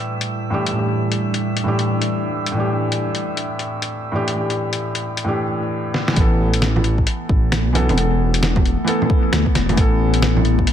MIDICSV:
0, 0, Header, 1, 6, 480
1, 0, Start_track
1, 0, Tempo, 451128
1, 800, Time_signature, 4, 2, 24, 8
1, 11416, End_track
2, 0, Start_track
2, 0, Title_t, "Synth texture"
2, 0, Program_c, 0, 99
2, 0, Note_on_c, 0, 76, 79
2, 5604, Note_off_c, 0, 76, 0
2, 11416, End_track
3, 0, Start_track
3, 0, Title_t, "Ambient pad"
3, 0, Program_c, 1, 92
3, 0, Note_on_c, 1, 45, 77
3, 0, Note_on_c, 1, 55, 80
3, 0, Note_on_c, 1, 62, 74
3, 0, Note_on_c, 1, 64, 74
3, 0, Note_on_c, 1, 71, 85
3, 5599, Note_off_c, 1, 71, 0
3, 5602, Note_off_c, 1, 45, 0
3, 5602, Note_off_c, 1, 55, 0
3, 5603, Note_off_c, 1, 64, 0
3, 5607, Note_off_c, 1, 62, 0
3, 6559, Note_on_c, 1, 57, 78
3, 6638, Note_on_c, 1, 59, 84
3, 11416, Note_off_c, 1, 57, 0
3, 11416, Note_off_c, 1, 59, 0
3, 11416, End_track
4, 0, Start_track
4, 0, Title_t, "Felt piano"
4, 0, Program_c, 2, 0
4, 0, Control_c, 2, 64, 127
4, 0, Note_on_c, 2, 45, 83
4, 0, Note_on_c, 2, 52, 76
4, 0, Note_on_c, 2, 62, 76
4, 0, Note_on_c, 2, 67, 93
4, 512, Note_off_c, 2, 45, 0
4, 527, Note_off_c, 2, 52, 0
4, 535, Note_on_c, 2, 45, 83
4, 540, Note_off_c, 2, 62, 0
4, 549, Note_on_c, 2, 52, 80
4, 555, Note_off_c, 2, 67, 0
4, 562, Note_on_c, 2, 62, 76
4, 574, Note_on_c, 2, 67, 96
4, 734, Note_off_c, 2, 45, 0
4, 750, Note_on_c, 2, 45, 64
4, 762, Note_off_c, 2, 52, 0
4, 778, Note_on_c, 2, 52, 61
4, 779, Note_off_c, 2, 62, 0
4, 785, Note_off_c, 2, 67, 0
4, 808, Note_on_c, 2, 62, 60
4, 835, Note_on_c, 2, 67, 72
4, 1713, Note_off_c, 2, 45, 0
4, 1727, Note_off_c, 2, 52, 0
4, 1742, Note_off_c, 2, 62, 0
4, 1743, Note_on_c, 2, 45, 86
4, 1756, Note_off_c, 2, 67, 0
4, 1757, Note_on_c, 2, 52, 81
4, 1774, Note_on_c, 2, 62, 79
4, 1787, Note_on_c, 2, 67, 96
4, 1934, Note_off_c, 2, 45, 0
4, 1942, Note_off_c, 2, 52, 0
4, 1950, Note_off_c, 2, 62, 0
4, 1957, Note_off_c, 2, 67, 0
4, 2678, Note_on_c, 2, 45, 86
4, 2706, Note_on_c, 2, 52, 80
4, 2735, Note_on_c, 2, 62, 79
4, 2764, Note_on_c, 2, 67, 94
4, 4357, Note_off_c, 2, 45, 0
4, 4371, Note_off_c, 2, 52, 0
4, 4380, Note_on_c, 2, 45, 86
4, 4385, Note_off_c, 2, 62, 0
4, 4391, Note_on_c, 2, 52, 81
4, 4400, Note_off_c, 2, 67, 0
4, 4408, Note_on_c, 2, 62, 78
4, 4421, Note_on_c, 2, 67, 97
4, 4586, Note_off_c, 2, 45, 0
4, 4602, Note_on_c, 2, 45, 67
4, 4614, Note_off_c, 2, 52, 0
4, 4622, Note_off_c, 2, 62, 0
4, 4629, Note_off_c, 2, 67, 0
4, 4631, Note_on_c, 2, 52, 61
4, 4658, Note_on_c, 2, 62, 61
4, 4688, Note_on_c, 2, 67, 75
4, 5559, Note_off_c, 2, 45, 0
4, 5574, Note_off_c, 2, 52, 0
4, 5578, Note_on_c, 2, 45, 90
4, 5587, Note_off_c, 2, 62, 0
4, 5593, Note_on_c, 2, 52, 83
4, 5602, Note_off_c, 2, 67, 0
4, 5609, Note_on_c, 2, 62, 80
4, 5622, Note_on_c, 2, 67, 97
4, 5772, Note_off_c, 2, 45, 0
4, 5780, Note_off_c, 2, 52, 0
4, 5788, Note_off_c, 2, 62, 0
4, 5794, Note_off_c, 2, 67, 0
4, 6519, Note_on_c, 2, 52, 92
4, 6562, Note_on_c, 2, 59, 83
4, 6573, Control_c, 2, 64, 0
4, 6601, Note_on_c, 2, 69, 100
4, 6786, Control_c, 2, 64, 127
4, 8197, Note_off_c, 2, 52, 0
4, 8219, Note_off_c, 2, 59, 0
4, 8221, Note_on_c, 2, 52, 95
4, 8238, Note_off_c, 2, 69, 0
4, 8243, Note_on_c, 2, 59, 87
4, 8260, Note_on_c, 2, 69, 105
4, 8418, Note_off_c, 2, 52, 0
4, 8434, Note_on_c, 2, 52, 75
4, 8459, Note_off_c, 2, 59, 0
4, 8468, Note_off_c, 2, 69, 0
4, 8479, Note_on_c, 2, 59, 67
4, 8518, Note_on_c, 2, 69, 82
4, 9394, Note_off_c, 2, 52, 0
4, 9410, Note_on_c, 2, 52, 96
4, 9416, Note_off_c, 2, 59, 0
4, 9432, Note_on_c, 2, 59, 85
4, 9437, Note_off_c, 2, 69, 0
4, 9454, Note_on_c, 2, 69, 105
4, 9608, Note_off_c, 2, 52, 0
4, 9619, Note_off_c, 2, 59, 0
4, 9630, Note_off_c, 2, 69, 0
4, 10348, Note_on_c, 2, 52, 97
4, 10391, Note_on_c, 2, 59, 87
4, 10434, Note_on_c, 2, 69, 106
4, 11416, Note_off_c, 2, 52, 0
4, 11416, Note_off_c, 2, 59, 0
4, 11416, Note_off_c, 2, 69, 0
4, 11416, End_track
5, 0, Start_track
5, 0, Title_t, "Detuned saw bass"
5, 0, Program_c, 3, 39
5, 6559, Note_on_c, 3, 33, 100
5, 7508, Note_off_c, 3, 33, 0
5, 7760, Note_on_c, 3, 33, 88
5, 8147, Note_on_c, 3, 35, 99
5, 8163, Note_off_c, 3, 33, 0
5, 8391, Note_on_c, 3, 28, 98
5, 8407, Note_off_c, 3, 35, 0
5, 9330, Note_off_c, 3, 28, 0
5, 9920, Note_on_c, 3, 38, 92
5, 10056, Note_off_c, 3, 38, 0
5, 10162, Note_on_c, 3, 28, 87
5, 10386, Note_off_c, 3, 28, 0
5, 10398, Note_on_c, 3, 33, 98
5, 11347, Note_off_c, 3, 33, 0
5, 11416, End_track
6, 0, Start_track
6, 0, Title_t, "Drums"
6, 224, Note_on_c, 9, 42, 49
6, 330, Note_off_c, 9, 42, 0
6, 708, Note_on_c, 9, 42, 49
6, 814, Note_off_c, 9, 42, 0
6, 1187, Note_on_c, 9, 42, 47
6, 1294, Note_off_c, 9, 42, 0
6, 1426, Note_on_c, 9, 42, 37
6, 1532, Note_off_c, 9, 42, 0
6, 1666, Note_on_c, 9, 42, 49
6, 1773, Note_off_c, 9, 42, 0
6, 1903, Note_on_c, 9, 42, 38
6, 2010, Note_off_c, 9, 42, 0
6, 2144, Note_on_c, 9, 42, 48
6, 2251, Note_off_c, 9, 42, 0
6, 2622, Note_on_c, 9, 42, 48
6, 2729, Note_off_c, 9, 42, 0
6, 3106, Note_on_c, 9, 42, 49
6, 3212, Note_off_c, 9, 42, 0
6, 3348, Note_on_c, 9, 42, 39
6, 3455, Note_off_c, 9, 42, 0
6, 3588, Note_on_c, 9, 42, 49
6, 3694, Note_off_c, 9, 42, 0
6, 3823, Note_on_c, 9, 42, 39
6, 3929, Note_off_c, 9, 42, 0
6, 4067, Note_on_c, 9, 42, 49
6, 4173, Note_off_c, 9, 42, 0
6, 4551, Note_on_c, 9, 42, 50
6, 4658, Note_off_c, 9, 42, 0
6, 4788, Note_on_c, 9, 42, 29
6, 4895, Note_off_c, 9, 42, 0
6, 5030, Note_on_c, 9, 42, 51
6, 5137, Note_off_c, 9, 42, 0
6, 5267, Note_on_c, 9, 42, 40
6, 5373, Note_off_c, 9, 42, 0
6, 5504, Note_on_c, 9, 42, 52
6, 5610, Note_off_c, 9, 42, 0
6, 6323, Note_on_c, 9, 38, 75
6, 6429, Note_off_c, 9, 38, 0
6, 6468, Note_on_c, 9, 38, 90
6, 6559, Note_on_c, 9, 42, 55
6, 6561, Note_on_c, 9, 36, 115
6, 6575, Note_off_c, 9, 38, 0
6, 6665, Note_off_c, 9, 42, 0
6, 6667, Note_off_c, 9, 36, 0
6, 6954, Note_on_c, 9, 42, 59
6, 7043, Note_off_c, 9, 42, 0
6, 7043, Note_on_c, 9, 40, 104
6, 7043, Note_on_c, 9, 42, 56
6, 7149, Note_off_c, 9, 40, 0
6, 7149, Note_off_c, 9, 42, 0
6, 7193, Note_on_c, 9, 61, 67
6, 7279, Note_on_c, 9, 42, 33
6, 7299, Note_off_c, 9, 61, 0
6, 7385, Note_off_c, 9, 42, 0
6, 7429, Note_on_c, 9, 36, 59
6, 7520, Note_on_c, 9, 42, 61
6, 7535, Note_off_c, 9, 36, 0
6, 7626, Note_off_c, 9, 42, 0
6, 7760, Note_on_c, 9, 36, 101
6, 7867, Note_off_c, 9, 36, 0
6, 8002, Note_on_c, 9, 40, 104
6, 8002, Note_on_c, 9, 42, 58
6, 8108, Note_off_c, 9, 40, 0
6, 8108, Note_off_c, 9, 42, 0
6, 8248, Note_on_c, 9, 42, 56
6, 8248, Note_on_c, 9, 61, 54
6, 8354, Note_off_c, 9, 42, 0
6, 8354, Note_off_c, 9, 61, 0
6, 8398, Note_on_c, 9, 42, 33
6, 8398, Note_on_c, 9, 61, 68
6, 8487, Note_off_c, 9, 42, 0
6, 8487, Note_on_c, 9, 42, 56
6, 8504, Note_off_c, 9, 61, 0
6, 8593, Note_off_c, 9, 42, 0
6, 8875, Note_on_c, 9, 42, 58
6, 8966, Note_off_c, 9, 42, 0
6, 8966, Note_on_c, 9, 40, 108
6, 8966, Note_on_c, 9, 42, 59
6, 9072, Note_off_c, 9, 40, 0
6, 9072, Note_off_c, 9, 42, 0
6, 9108, Note_on_c, 9, 36, 112
6, 9116, Note_on_c, 9, 61, 65
6, 9209, Note_on_c, 9, 42, 32
6, 9214, Note_off_c, 9, 36, 0
6, 9223, Note_off_c, 9, 61, 0
6, 9315, Note_off_c, 9, 42, 0
6, 9444, Note_on_c, 9, 42, 60
6, 9550, Note_off_c, 9, 42, 0
6, 9594, Note_on_c, 9, 61, 67
6, 9680, Note_on_c, 9, 36, 107
6, 9701, Note_off_c, 9, 61, 0
6, 9787, Note_off_c, 9, 36, 0
6, 9924, Note_on_c, 9, 40, 109
6, 9924, Note_on_c, 9, 42, 59
6, 10030, Note_off_c, 9, 40, 0
6, 10030, Note_off_c, 9, 42, 0
6, 10067, Note_on_c, 9, 36, 62
6, 10164, Note_on_c, 9, 40, 63
6, 10164, Note_on_c, 9, 42, 58
6, 10173, Note_off_c, 9, 36, 0
6, 10270, Note_off_c, 9, 40, 0
6, 10270, Note_off_c, 9, 42, 0
6, 10313, Note_on_c, 9, 42, 33
6, 10313, Note_on_c, 9, 61, 68
6, 10399, Note_on_c, 9, 36, 124
6, 10401, Note_off_c, 9, 42, 0
6, 10401, Note_on_c, 9, 42, 57
6, 10419, Note_off_c, 9, 61, 0
6, 10505, Note_off_c, 9, 36, 0
6, 10507, Note_off_c, 9, 42, 0
6, 10786, Note_on_c, 9, 42, 57
6, 10879, Note_off_c, 9, 42, 0
6, 10879, Note_on_c, 9, 40, 110
6, 10879, Note_on_c, 9, 42, 58
6, 10985, Note_off_c, 9, 40, 0
6, 10985, Note_off_c, 9, 42, 0
6, 11030, Note_on_c, 9, 61, 64
6, 11118, Note_on_c, 9, 42, 32
6, 11136, Note_off_c, 9, 61, 0
6, 11224, Note_off_c, 9, 42, 0
6, 11266, Note_on_c, 9, 36, 64
6, 11354, Note_on_c, 9, 42, 59
6, 11372, Note_off_c, 9, 36, 0
6, 11416, Note_off_c, 9, 42, 0
6, 11416, End_track
0, 0, End_of_file